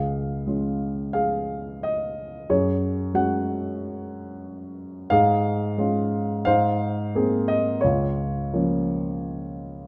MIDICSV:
0, 0, Header, 1, 2, 480
1, 0, Start_track
1, 0, Key_signature, -5, "major"
1, 0, Tempo, 682594
1, 1756, Tempo, 660793
1, 1757, Time_signature, 4, 2, 24, 8
1, 4636, Tempo, 686499
1, 6076, Tempo, 737101
1, 6955, End_track
2, 0, Start_track
2, 0, Title_t, "Grand piano"
2, 0, Program_c, 0, 0
2, 0, Control_c, 0, 64, 127
2, 0, Note_on_c, 0, 37, 45
2, 0, Note_on_c, 0, 68, 43
2, 0, Note_on_c, 0, 77, 57
2, 326, Note_on_c, 0, 56, 32
2, 333, Note_on_c, 0, 61, 29
2, 334, Note_on_c, 0, 65, 34
2, 775, Note_off_c, 0, 68, 0
2, 786, Note_off_c, 0, 77, 0
2, 797, Note_on_c, 0, 77, 68
2, 805, Note_on_c, 0, 68, 50
2, 1289, Note_on_c, 0, 75, 67
2, 1294, Note_off_c, 0, 77, 0
2, 1727, Note_off_c, 0, 68, 0
2, 1729, Note_off_c, 0, 56, 0
2, 1732, Note_off_c, 0, 37, 0
2, 1733, Note_off_c, 0, 61, 0
2, 1733, Note_off_c, 0, 65, 0
2, 1755, Note_on_c, 0, 42, 49
2, 1755, Note_on_c, 0, 68, 45
2, 1757, Note_on_c, 0, 73, 61
2, 1766, Control_c, 0, 64, 0
2, 1773, Note_off_c, 0, 75, 0
2, 1875, Control_c, 0, 64, 127
2, 2219, Note_on_c, 0, 56, 37
2, 2227, Note_on_c, 0, 61, 32
2, 2227, Note_on_c, 0, 66, 37
2, 2230, Note_on_c, 0, 78, 66
2, 2248, Note_off_c, 0, 73, 0
2, 2674, Note_off_c, 0, 78, 0
2, 2675, Note_off_c, 0, 68, 0
2, 3623, Note_off_c, 0, 56, 0
2, 3626, Note_off_c, 0, 61, 0
2, 3627, Note_off_c, 0, 66, 0
2, 3629, Note_off_c, 0, 42, 0
2, 3647, Note_on_c, 0, 77, 87
2, 3652, Note_on_c, 0, 44, 54
2, 3660, Note_on_c, 0, 68, 58
2, 3670, Control_c, 0, 64, 0
2, 3799, Control_c, 0, 64, 127
2, 4136, Note_on_c, 0, 56, 44
2, 4143, Note_on_c, 0, 61, 34
2, 4145, Note_on_c, 0, 65, 45
2, 4602, Note_off_c, 0, 77, 0
2, 4604, Note_off_c, 0, 44, 0
2, 4608, Note_off_c, 0, 68, 0
2, 4618, Note_off_c, 0, 56, 0
2, 4622, Note_off_c, 0, 61, 0
2, 4622, Note_off_c, 0, 65, 0
2, 4627, Note_on_c, 0, 77, 87
2, 4637, Note_on_c, 0, 72, 64
2, 4638, Note_on_c, 0, 44, 58
2, 4644, Control_c, 0, 64, 0
2, 4765, Control_c, 0, 64, 127
2, 5117, Note_on_c, 0, 58, 45
2, 5124, Note_on_c, 0, 68, 53
2, 5125, Note_on_c, 0, 60, 43
2, 5347, Note_on_c, 0, 75, 72
2, 5374, Note_off_c, 0, 77, 0
2, 5566, Note_off_c, 0, 44, 0
2, 5566, Note_off_c, 0, 72, 0
2, 5572, Note_off_c, 0, 75, 0
2, 5577, Note_on_c, 0, 73, 65
2, 5580, Note_off_c, 0, 58, 0
2, 5583, Note_off_c, 0, 68, 0
2, 5584, Note_off_c, 0, 60, 0
2, 5595, Note_on_c, 0, 37, 51
2, 5596, Note_on_c, 0, 65, 43
2, 5603, Control_c, 0, 64, 0
2, 5729, Control_c, 0, 64, 127
2, 6085, Note_on_c, 0, 53, 38
2, 6088, Note_on_c, 0, 58, 34
2, 6090, Note_on_c, 0, 61, 39
2, 6955, Note_off_c, 0, 37, 0
2, 6955, Note_off_c, 0, 53, 0
2, 6955, Note_off_c, 0, 58, 0
2, 6955, Note_off_c, 0, 61, 0
2, 6955, Note_off_c, 0, 65, 0
2, 6955, Note_off_c, 0, 73, 0
2, 6955, End_track
0, 0, End_of_file